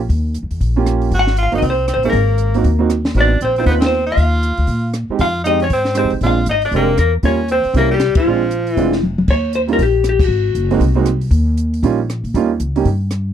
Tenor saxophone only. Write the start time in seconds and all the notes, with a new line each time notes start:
1.14 F#4
1.38 F4
1.55 D#4
1.63 C4
1.88 C4
2.05 A#3
3.17 D4
3.42 C4
3.58 C4
3.66 B3
3.80 C4
4.06 F4
5.21 F4
5.44 D#4
5.62 C#4
5.73 C4
5.98 C4
6.24 F4
6.49 D#4
6.64 D4
6.76 A#3
6.99 A#3
7.25 C#4
7.51 C4
7.77 A#3
7.91 G3
8.17 F3
8.73 E3